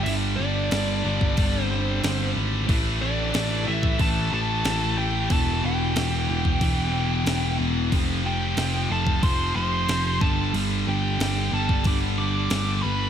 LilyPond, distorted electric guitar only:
\new Staff \with { instrumentName = "Distorted electric guitar" } { \clef bass \time 4/4 \key g \mixolydian \tempo 4 = 92 <g, d g>8 <g, d g>8 <g, d g>8 <g, d g>8 <g, d g>8 <g, d g>8 <g, d g>8 <g, d g>8 | <a, e a>8 <a, e a>8 <a, e a>8 <a, e a>8 <a, e a>8 <a, e a>8 <a, e a>8 <a, e a>8 | <e, b, e>8 <e, b, e>8 <e, b, e>8 <e, b, e>8 <e, b, e>8 <e, b, e>8 <e, b, e>8 <e, b, e>8 | <f, c f>8 <f, c f>8 <f, c f>8 <f, c f>8 <f, c f>8 <f, c f>8 <f, c f>8 <g, d g>8 |
<g, d g>8 <g, d g>8 <g, d g>8 <g, d g>8 <g, d g>8 <g, d g>8 <g, d g>8 <g, d g>8 | }